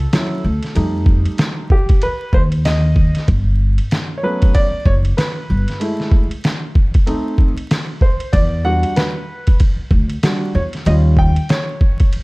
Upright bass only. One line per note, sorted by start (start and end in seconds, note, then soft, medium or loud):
0.44 0.59 D2 medium
0.76 1.25 F2 loud
2.33 3.11 D#2 medium
3.28 3.77 G1 loud
4.86 5.10 F#1 medium
5.50 5.64 G1 medium
8.33 8.82 E2 loud
9.91 10.16 D2 medium
10.55 10.69 E2 medium
10.86 11.35 D#2 loud